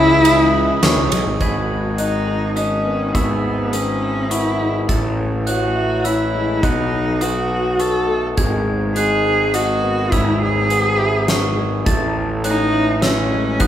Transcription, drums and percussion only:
0.25 ride
0.83 snare, ride
1.12 ride
1.41 kick, closed hi-hat
1.98 closed hi-hat
2.57 closed hi-hat
3.15 kick, closed hi-hat
3.73 closed hi-hat
4.31 closed hi-hat
4.89 kick, closed hi-hat
5.47 closed hi-hat
6.05 closed hi-hat
6.63 kick, closed hi-hat
7.21 closed hi-hat
7.80 closed hi-hat
8.37 kick, closed hi-hat
8.96 closed hi-hat
9.54 closed hi-hat
10.12 kick, closed hi-hat
10.70 closed hi-hat
11.28 snare, closed hi-hat
11.86 kick, closed hi-hat
12.44 closed hi-hat
13.02 snare, closed hi-hat
13.60 kick, closed hi-hat

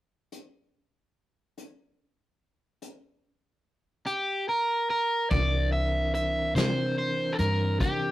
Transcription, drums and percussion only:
0.32 closed hi-hat
1.58 closed hi-hat
2.82 closed hi-hat
4.06 closed hi-hat
5.31 kick, closed hi-hat
6.14 closed hi-hat
6.56 snare, closed hi-hat
7.39 closed hi-hat
7.80 kick, closed hi-hat

